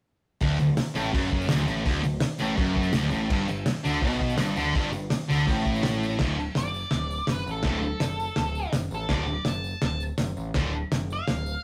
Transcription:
0.41 picked electric bass D1, distorted electric guitar D2, kick, open hi-hat
0.59 picked electric bass D1, distorted electric guitar D2, tambourine
0.77 snare, open hi-hat, tambourine
0.95 picked electric bass A1, distorted electric guitar A2, tambourine
1.13 picked electric bass F#1, distorted electric guitar F#2, kick, open hi-hat
1.24 tambourine
1.31 kick
1.41 tambourine
1.48 picked electric bass D1, distorted electric guitar D2, snare, open hi-hat, tambourine
1.67 picked electric bass A1, distorted electric guitar A2, tambourine
1.85 picked electric bass D1, distorted electric guitar D2, kick, open hi-hat
2.04 picked electric bass D1, distorted electric guitar D2, tambourine
2.20 snare, open hi-hat, tambourine
2.39 picked electric bass A1, distorted electric guitar A2, tambourine
2.57 picked electric bass F#1, distorted electric guitar F#2, kick, open hi-hat
2.65 tambourine
2.76 kick
2.83 tambourine
2.93 picked electric bass D1, distorted electric guitar D2, snare, open hi-hat, tambourine
3.10 picked electric bass A1, distorted electric guitar A2, tambourine
3.30 picked electric bass G1, distorted electric guitar G2, kick, crash
3.48 picked electric bass G1, distorted electric guitar G2, tambourine
3.66 snare, open hi-hat, tambourine
3.84 picked electric bass D2, distorted electric guitar D3, tambourine
4.02 picked electric bass B1, distorted electric guitar B2, kick, open hi-hat
4.11 tambourine
4.20 kick
4.30 tambourine
4.37 picked electric bass G1, distorted electric guitar G2, snare, open hi-hat, tambourine
4.56 picked electric bass D2, distorted electric guitar D3, tambourine
4.74 picked electric bass G1, distorted electric guitar G2, kick, open hi-hat, tambourine
4.84 tambourine
4.93 picked electric bass G1, distorted electric guitar G2, tambourine
5.02 tambourine
5.10 snare, open hi-hat, tambourine
5.29 picked electric bass D2, distorted electric guitar D3, tambourine
5.47 picked electric bass A1, distorted electric guitar A2, kick, open hi-hat
5.65 kick
5.76 tambourine
5.83 snare, open hi-hat, tambourine
5.95 tambourine
6.03 tambourine
6.12 tambourine
6.19 picked electric bass D1, distorted electric guitar D2 A2 D3, kick, snare, crash, tambourine
6.40 tambourine
6.55 picked electric bass F#1, lead electric guitar D5, snare, open hi-hat, tambourine
6.74 tambourine
6.91 picked electric bass D1, snare, open hi-hat, tambourine
7.11 tambourine
7.27 picked electric bass F#1, snare, open hi-hat, tambourine
7.32 lead electric guitar B4
7.46 picked electric bass A1, tambourine
7.51 lead electric guitar A4
7.63 picked electric bass D1, distorted electric guitar D2 A2 D3, kick, snare, open hi-hat, tambourine
7.67 lead electric guitar A4
7.83 tambourine
8.00 picked electric bass F#1, snare, open hi-hat, tambourine
8.20 tambourine
8.36 picked electric bass D1, snare, open hi-hat, tambourine
8.55 tambourine
8.73 picked electric bass F#1, snare, open hi-hat, tambourine
8.91 picked electric bass A1, lead electric guitar A4, tambourine
9.09 picked electric bass D1, distorted electric guitar D2 A2 D3, lead electric guitar D5, kick, snare, open hi-hat, tambourine
9.28 tambourine
9.45 picked electric bass F#1, lead electric guitar A5, snare, open hi-hat, tambourine
9.64 tambourine
9.81 picked electric bass D1, lead electric guitar A5, snare, open hi-hat, tambourine
10.00 tambourine
10.18 picked electric bass F#1, snare, open hi-hat, tambourine
10.37 picked electric bass A1, tambourine
10.54 picked electric bass D1, distorted electric guitar D2 A2 D3, kick, snare, open hi-hat, tambourine
10.73 tambourine
10.91 picked electric bass F#1, snare, open hi-hat, tambourine
11.10 lead electric guitar F5, tambourine
11.28 picked electric bass D1, snare, open hi-hat, tambourine
11.46 tambourine

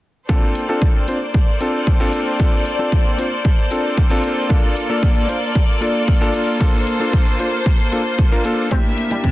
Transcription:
0.29 string section A#3 A4 C5 D5, electric grand piano C4 D4 F4 A4, kick
0.55 open hi-hat
0.69 electric grand piano C4 D4 F4 A4
0.82 kick
1.08 electric grand piano C4 D4 F4 C5, open hi-hat
1.34 kick
1.60 electric grand piano C4 D4 F4 A4, open hi-hat
1.87 kick
2.00 electric grand piano C4 D4 F4 A4
2.13 open hi-hat
2.39 electric grand piano C4 D4 F4 A4, kick
2.66 open hi-hat
2.79 electric grand piano C4 D4 F4 A4
2.92 kick
3.18 electric grand piano C4 D4 F4 C5, open hi-hat
3.45 kick
3.71 electric grand piano C4 D4 F4 A4, open hi-hat
3.98 kick
4.10 electric grand piano C4 D4 F4 A4
4.24 open hi-hat
4.49 electric grand piano A#3 D4 F4 A4, string section F4 D5, kick
4.76 open hi-hat
4.89 electric grand piano A#3 D4 F4 A4
5.03 kick
5.28 electric grand piano A#3 D4 F4 C5, open hi-hat
5.55 kick
5.81 electric grand piano A#3 D4 F4 A4, open hi-hat
6.08 kick
6.21 electric grand piano A#3 D4 F4 A4
6.34 open hi-hat
6.60 electric grand piano A#3 D4 F4 A4, string section C5, kick
6.87 open hi-hat
7.00 electric grand piano A#3 D4 F4 A4
7.13 kick
7.39 electric grand piano A#3 D4 F4 C5, open hi-hat
7.66 kick
7.92 electric grand piano A#3 D4 F4 A4, open hi-hat
8.19 kick
8.31 electric grand piano A#3 D4 F4 A#4
8.44 electric grand piano A#3 D4 F4 A4, open hi-hat
8.71 string section C3 E5, electric grand piano A#3 D4 E4 G4, clean electric guitar C4, kick, closed hi-hat, high conga
8.98 open hi-hat
9.10 clean electric guitar G3, electric grand piano A#3 D4 E4 G4, closed hi-hat, high conga
9.24 clean electric guitar C3, kick, closed hi-hat

